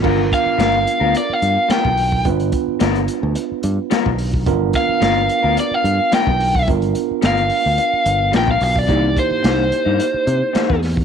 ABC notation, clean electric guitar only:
X:1
M:4/4
L:1/16
Q:"Swing 16ths" 1/4=108
K:Gmix
V:1 name="Clean electric guitar"
[G,B,F^A] z3 [G,B,FA] z2 [B,FA] z4 [G,B,FA] z3 | z4 [G,B,F^A] z6 z [G,B,FA] z3 | z4 [G,B,F^A] z2 [B,FA] z4 [G,B,FA] z3 | z4 [G,B,F^A] z6 z [G,B,FA] z3 |
[C,E,_B,^D] z3 [C,E,B,D] z2 [E,B,D] z4 [C,E,B,D] z3 |]